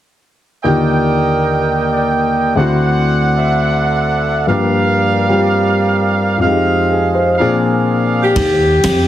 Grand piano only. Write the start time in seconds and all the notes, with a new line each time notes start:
0.64 D#2 D3 D#3 F4 G4
2.56 D2 D3 C4 E4
2.60 F#4
4.47 G2 F3 A#3 D4
4.52 G4
5.29 G3 C4 F4 G4
6.38 F2 F3
6.43 G#3 D#4
6.49 G4
6.92 G#4
7.15 C5
7.40 A#2 F3 C4 D4 G#4